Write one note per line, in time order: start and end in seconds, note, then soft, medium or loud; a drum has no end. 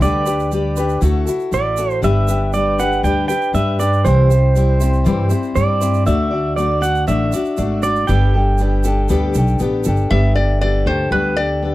0.01 0.98 D2 medium
0.01 0.26 D3 medium
0.01 0.26 G3 medium
0.01 0.27 D4 medium
0.01 0.26 G4 medium
0.01 0.24 B4 medium
0.01 0.99 D5 medium
0.01 shaker medium
0.26 0.51 D4 soft
0.26 0.52 G4 soft
0.26 0.51 B4 medium
0.26 shaker medium
0.40 shaker soft
0.51 0.77 G3 medium
0.51 0.77 D4 medium
0.51 0.77 G4 medium
0.51 0.76 B4 medium
0.51 shaker medium
0.76 1.02 D4 soft
0.76 1.03 G4 medium
0.76 1.02 B4 medium
0.76 shaker medium
0.89 shaker soft
1.01 1.26 D2 medium
1.01 1.27 D3 medium
1.01 1.27 A3 medium
1.01 1.27 E4 medium
1.01 1.26 F#4 medium
1.01 1.24 A4 medium
1.01 shaker medium
1.25 1.51 E4 soft
1.25 1.52 F#4 medium
1.25 1.51 A4 medium
1.25 shaker medium
1.40 shaker soft
1.51 2.00 A1 medium
1.51 1.77 A3 medium
1.51 1.78 E4 medium
1.51 1.78 F#4 medium
1.51 1.77 A4 medium
1.51 2.00 D5 medium
1.51 shaker medium
1.77 2.02 E4 soft
1.77 2.03 F#4 soft
1.77 2.03 A4 medium
1.77 shaker medium
1.90 shaker soft
2.02 3.00 G1 medium
2.02 2.28 G3 medium
2.02 2.28 D4 medium
2.02 2.28 G4 medium
2.02 2.26 B4 medium
2.02 2.53 E5 loud
2.02 shaker medium
2.27 2.53 D4 soft
2.27 2.54 G4 soft
2.27 2.53 B4 soft
2.27 shaker medium
2.53 2.79 G3 medium
2.53 2.79 D4 medium
2.53 2.79 G4 medium
2.53 2.78 B4 medium
2.53 2.80 D5 medium
2.53 shaker medium
2.79 3.03 D4 soft
2.79 3.04 G4 soft
2.79 3.04 B4 medium
2.79 3.04 F#5 medium
2.79 shaker medium
2.92 shaker soft
3.03 3.27 D2 medium
3.03 3.29 G3 medium
3.03 3.29 D4 medium
3.03 3.29 G4 medium
3.03 3.27 B4 medium
3.03 3.27 G5 medium
3.03 shaker medium
3.28 3.53 D4 soft
3.28 3.54 G4 soft
3.28 3.54 B4 medium
3.28 3.54 G5 medium
3.28 shaker medium
3.42 shaker soft
3.53 4.02 G2 medium
3.53 3.79 G3 medium
3.53 3.79 D4 medium
3.53 3.79 G4 medium
3.53 3.77 B4 medium
3.53 3.80 E5 medium
3.53 shaker medium
3.79 4.05 D4 soft
3.79 4.05 G4 medium
3.79 4.04 B4 medium
3.79 4.06 D5 medium
3.79 shaker medium
3.93 shaker soft
4.04 5.02 C2 medium
4.04 4.30 C3 medium
4.04 4.30 E3 medium
4.04 4.30 G3 medium
4.04 4.31 C4 medium
4.04 4.29 E4 medium
4.04 5.52 C5 medium
4.04 4.29 C5 medium
4.04 shaker medium
4.30 4.54 G3 soft
4.30 4.55 C4 soft
4.30 4.56 E4 soft
4.30 4.55 C5 medium
4.30 shaker medium
4.55 4.81 G3 medium
4.55 4.81 C4 medium
4.55 4.80 E4 medium
4.55 4.79 C5 medium
4.55 shaker medium
4.80 5.05 G3 soft
4.80 5.05 C4 medium
4.80 5.05 E4 medium
4.80 5.06 C5 medium
4.80 shaker medium
4.93 shaker soft
5.04 5.30 G2 medium
5.04 5.30 C3 medium
5.04 5.31 E3 medium
5.04 5.31 G3 medium
5.04 5.30 C4 medium
5.04 5.29 E4 medium
5.04 5.28 C5 medium
5.04 shaker medium
5.29 5.54 G3 soft
5.29 5.55 C4 medium
5.29 5.56 E4 medium
5.29 5.55 C5 medium
5.29 shaker medium
5.43 shaker soft
5.55 6.04 G2 medium
5.55 5.81 G3 medium
5.55 5.81 C4 medium
5.55 5.80 E4 medium
5.55 5.79 C5 medium
5.55 6.06 D5 medium
5.55 shaker medium
5.81 6.06 G3 soft
5.81 6.06 C4 soft
5.81 6.06 E4 medium
5.81 6.06 C5 medium
5.81 shaker medium
5.94 shaker soft
6.06 7.04 D2 medium
6.06 6.31 D3 medium
6.06 6.32 A3 medium
6.06 6.32 D4 medium
6.06 6.31 F#4 medium
6.06 6.29 D5 medium
6.06 6.56 E5 medium
6.06 shaker medium
6.31 6.57 D4 soft
6.31 6.57 F#4 soft
6.31 6.57 D5 soft
6.56 6.82 A3 medium
6.56 6.82 D4 medium
6.56 6.81 F#4 medium
6.56 6.83 D5 medium
6.56 6.80 D5 medium
6.56 shaker medium
6.81 7.07 D4 soft
6.81 7.07 F#4 soft
6.81 7.07 D5 medium
6.81 7.07 F#5 medium
6.81 shaker medium
6.95 shaker soft
7.07 7.32 A1 medium
7.07 7.33 D3 medium
7.07 7.33 A3 medium
7.07 7.33 D4 medium
7.07 7.33 F#4 medium
7.07 7.32 D5 medium
7.07 7.86 E5 medium
7.07 shaker medium
7.32 7.57 D4 soft
7.32 7.58 F#4 medium
7.32 7.58 D5 medium
7.32 shaker medium
7.45 shaker soft
7.57 8.06 G#1 medium
7.57 7.83 A3 medium
7.57 7.83 D4 medium
7.57 7.83 F#4 medium
7.57 7.81 D5 medium
7.57 shaker medium
7.82 8.07 D4 soft
7.82 8.09 F#4 medium
7.82 8.08 D5 medium
7.82 8.09 D5 medium
7.82 shaker medium
7.96 shaker soft
8.07 9.06 G1 medium
8.07 8.34 G3 medium
8.07 8.34 B3 medium
8.07 8.34 D4 medium
8.07 8.34 G4 medium
8.07 8.33 A4 medium
8.07 9.56 G5 medium
8.07 shaker medium
8.34 8.60 D4 soft
8.34 8.60 G4 soft
8.34 8.59 A4 soft
8.58 8.85 B3 medium
8.58 8.86 D4 medium
8.58 shaker medium
8.62 8.84 G4 medium
8.62 8.83 A4 medium
8.84 9.09 D4 soft
8.84 9.09 G4 medium
8.84 9.10 A4 medium
8.84 shaker medium
9.09 9.34 D2 medium
9.09 9.35 G3 medium
9.09 9.35 B3 medium
9.09 9.35 D4 medium
9.09 9.35 G4 medium
9.09 9.34 A4 medium
9.09 shaker medium
9.34 9.58 B1 medium
9.34 9.59 D4 soft
9.34 9.60 G4 medium
9.34 9.60 A4 medium
9.34 shaker medium
9.47 shaker soft
9.59 9.83 A1 medium
9.59 9.85 B3 medium
9.59 9.86 D4 medium
9.59 9.86 G4 medium
9.59 9.84 A4 medium
9.59 shaker medium
9.84 10.09 G1 medium
9.84 10.10 D4 soft
9.84 10.11 G4 soft
9.84 10.11 A4 medium
9.84 shaker medium
9.96 shaker soft
10.10 10.83 G1 medium
10.10 10.36 G3 medium
10.10 10.36 B3 medium
10.10 10.36 D4 medium
10.10 10.36 G4 medium
10.10 10.34 A4 medium
10.10 10.34 E5 loud
10.36 10.61 D4 soft
10.36 10.62 G4 soft
10.36 10.61 A4 soft
10.36 10.60 D5 medium
10.61 10.86 B3 medium
10.61 10.87 D4 medium
10.61 10.86 G4 medium
10.61 10.85 A4 medium
10.61 10.87 D5 medium
10.86 11.10 D2 medium
10.86 11.11 D4 soft
10.86 11.12 G4 soft
10.86 11.12 A4 medium
10.86 11.11 C5 medium
11.11 11.75 D2 medium
11.11 11.37 G3 medium
11.11 11.37 B3 medium
11.11 11.38 D4 medium
11.11 11.37 G4 medium
11.11 11.35 A4 medium
11.11 11.38 B4 medium
11.36 11.61 D4 soft
11.36 11.63 G4 soft
11.36 11.62 A4 medium
11.36 11.75 D5 medium
11.62 11.75 B3 medium
11.62 11.75 D4 medium
11.62 11.75 G4 medium
11.62 11.75 A4 medium